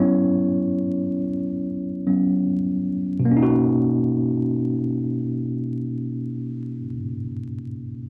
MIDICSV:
0, 0, Header, 1, 2, 480
1, 0, Start_track
1, 0, Key_signature, 5, "major"
1, 0, Tempo, 500000
1, 7767, End_track
2, 0, Start_track
2, 0, Title_t, "Tine electric piano"
2, 0, Program_c, 0, 4
2, 0, Note_on_c, 0, 54, 56
2, 0, Note_on_c, 0, 59, 52
2, 0, Note_on_c, 0, 61, 63
2, 0, Note_on_c, 0, 64, 55
2, 0, Note_on_c, 0, 73, 79
2, 160, Control_c, 0, 64, 127
2, 1141, Note_off_c, 0, 54, 0
2, 1144, Note_off_c, 0, 59, 0
2, 1147, Note_off_c, 0, 61, 0
2, 1985, Note_on_c, 0, 54, 51
2, 1986, Note_on_c, 0, 59, 40
2, 1990, Note_on_c, 0, 61, 54
2, 2338, Note_off_c, 0, 73, 0
2, 2342, Note_off_c, 0, 54, 0
2, 2343, Note_off_c, 0, 59, 0
2, 2345, Note_off_c, 0, 61, 0
2, 2348, Note_off_c, 0, 64, 0
2, 3067, Note_on_c, 0, 47, 80
2, 3122, Note_on_c, 0, 58, 68
2, 3180, Note_on_c, 0, 61, 66
2, 3190, Control_c, 0, 64, 0
2, 3232, Note_on_c, 0, 63, 69
2, 3288, Note_on_c, 0, 66, 88
2, 3373, Control_c, 0, 64, 127
2, 6514, Note_off_c, 0, 47, 0
2, 6570, Note_off_c, 0, 58, 0
2, 6627, Note_off_c, 0, 61, 0
2, 6679, Note_off_c, 0, 63, 0
2, 6736, Note_off_c, 0, 66, 0
2, 7767, End_track
0, 0, End_of_file